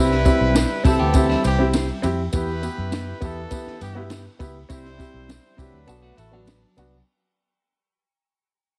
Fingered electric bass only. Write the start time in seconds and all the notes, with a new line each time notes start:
Already playing: C2
0.40 B1
0.85 C2
1.00 D2
1.44 C2
2.04 F2
2.33 E2
2.78 F#2
3.22 E2
3.67 muted fingered electric bass stroke
3.81 G2
4.40 C#2
4.70 C2
5.14 B1
5.58 C2
5.73 D2
5.87 B1
6.17 A1
6.77 C2